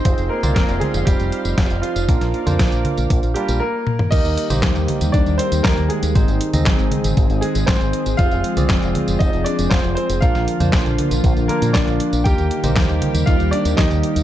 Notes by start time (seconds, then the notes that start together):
Already playing: C4 D#4 C5 C6
0.05 F1 C4 F4 G#4 C5 F5, kick, closed hi-hat, tambourine
0.18 F1, closed hi-hat, tambourine
0.29 A#3 A#4
0.43 C2 C4 F4 C5 D5, closed hi-hat, tambourine, high conga
0.55 F1 A#3 A#4, kick, snare, closed hi-hat, tambourine
0.69 F1, closed hi-hat, tambourine
0.80 G#3 G#4, closed hi-hat, high conga
0.94 F1, closed hi-hat, tambourine
1.05 F1 G3 G4, kick, closed hi-hat, tambourine
1.20 F1, closed hi-hat, tambourine
1.32 closed hi-hat
1.45 F1, closed hi-hat, tambourine
1.58 F1, kick, snare, closed hi-hat, tambourine
1.71 F1, closed hi-hat, tambourine
1.82 F3 F4, closed hi-hat
1.96 F1, closed hi-hat, tambourine
2.09 A#1 A#3 D4 F4 A#4 D5 D6, kick, closed hi-hat, tambourine
2.21 A#1, snare, closed hi-hat, tambourine
2.34 closed hi-hat
2.47 F2 A#3 D4 F4 C5, closed hi-hat, tambourine, high conga
2.59 A#1, kick, snare, closed hi-hat, tambourine
2.72 A#1, closed hi-hat, tambourine
2.85 closed hi-hat, high conga
2.98 A#1, closed hi-hat, tambourine
3.10 A#1, kick, closed hi-hat, tambourine
3.23 A#1, closed hi-hat, tambourine
3.34 G3 A#3 D4 F4 G4 A#4, closed hi-hat
3.48 A#1, closed hi-hat, tambourine
3.60 A#3 A#4
3.87 high tom
3.99 mid tom
4.11 D#2 D#3 G3 A#3 D#4 G4 A#4 D#5, kick, closed hi-hat, crash, tambourine
4.25 D#2, closed hi-hat, tambourine
4.37 closed hi-hat
4.50 A#1 A#3 D#4 G4 C5, closed hi-hat, tambourine, high conga
4.63 D#2, kick, snare, clap, closed hi-hat, tambourine
4.76 D#2, closed hi-hat, tambourine
4.88 closed hi-hat, high conga
5.01 D#2, closed hi-hat, tambourine
5.12 D#2 D4 D5, kick, closed hi-hat, tambourine
5.26 D#2, closed hi-hat, tambourine
5.38 C4 C5, closed hi-hat
5.52 D#2, closed hi-hat, tambourine
5.63 D#2 A#3 A#4, kick, snare, clap, closed hi-hat, tambourine
5.77 D#2, closed hi-hat, tambourine
5.89 G#3 G#4, closed hi-hat
6.03 D#2, closed hi-hat, tambourine
6.15 G#1 G#3 C4 D#4 G#4 C5, kick, closed hi-hat, tambourine
6.28 G#1, closed hi-hat, tambourine
6.41 closed hi-hat
6.53 D#2 C4 D#4 G#4 D#5, closed hi-hat, tambourine, high conga
6.66 G#1, kick, snare, clap, closed hi-hat, tambourine
6.79 G#1, closed hi-hat, tambourine
6.92 closed hi-hat, high conga
7.04 G#1, closed hi-hat, tambourine
7.17 G#1, kick, closed hi-hat, tambourine
7.30 G#1, closed hi-hat, tambourine
7.41 G#3 G#4, closed hi-hat
7.55 G#1, closed hi-hat, tambourine
7.66 G#1 C4 C5, kick, snare, clap, closed hi-hat, tambourine
7.81 G#1, closed hi-hat, tambourine
7.93 closed hi-hat
8.06 G#1, closed hi-hat, tambourine
8.17 F1 F3 C4 F4 G#4 C5 F5, kick, closed hi-hat, tambourine
8.31 F1, closed hi-hat, tambourine
8.44 closed hi-hat
8.57 C2 C4 F4 G#4 D5, closed hi-hat, tambourine, high conga
8.70 F1, kick, snare, clap, closed hi-hat, tambourine
8.82 F1, closed hi-hat, tambourine
8.95 closed hi-hat, high conga
9.08 F1, closed hi-hat, tambourine
9.19 F1 D#4 D#5, kick, closed hi-hat, tambourine
9.33 F1, closed hi-hat, tambourine
9.44 D4 D5, closed hi-hat
9.59 F1, closed hi-hat, tambourine
9.70 F1 C4 C5, kick, snare, clap, closed hi-hat, tambourine
9.84 F1, closed hi-hat, tambourine
9.95 C4 C5, closed hi-hat
10.09 F1, closed hi-hat, tambourine
10.21 A#1 D3 F3 A#3 D4 F4 A#4 F5, kick, closed hi-hat, tambourine
10.35 A#1, snare, closed hi-hat, tambourine
10.48 closed hi-hat
10.60 F2 A#3 D4 F4 C5, closed hi-hat, tambourine, high conga
10.73 A#1, kick, snare, clap, closed hi-hat, tambourine
10.86 A#1, closed hi-hat, tambourine
10.98 closed hi-hat, high conga
11.11 A#1, closed hi-hat, tambourine
11.24 A#1, kick, closed hi-hat, tambourine
11.37 A#1, closed hi-hat, tambourine
11.48 A#3 D4 F4 A#4, closed hi-hat
11.62 A#2, closed hi-hat, tambourine
11.73 A#1 D4 D5, kick, snare, clap, closed hi-hat, tambourine
11.87 A#1, closed hi-hat, tambourine
12.00 closed hi-hat
12.13 A#1, closed hi-hat, tambourine
12.24 D#2 D#3 G3 A#3 D#4 G4 A#4 G5, kick, closed hi-hat, tambourine
12.38 D#2, closed hi-hat, tambourine
12.51 closed hi-hat
12.64 A#1 A#3 D#4 G4 C5, closed hi-hat, tambourine, high conga
12.76 D#2, kick, snare, clap, closed hi-hat, tambourine
12.89 D#2, closed hi-hat, tambourine
13.02 closed hi-hat, high conga
13.14 D#2, closed hi-hat, tambourine
13.26 D#2 F4 F5, kick, closed hi-hat, tambourine
13.40 D#2, closed hi-hat, tambourine
13.51 D4 D5, closed hi-hat
13.65 D#2, closed hi-hat, tambourine
13.77 D#2 D#4 D#5, kick, snare, clap, closed hi-hat, tambourine
13.91 D#2, closed hi-hat, tambourine
14.03 closed hi-hat
14.16 D#2, closed hi-hat, tambourine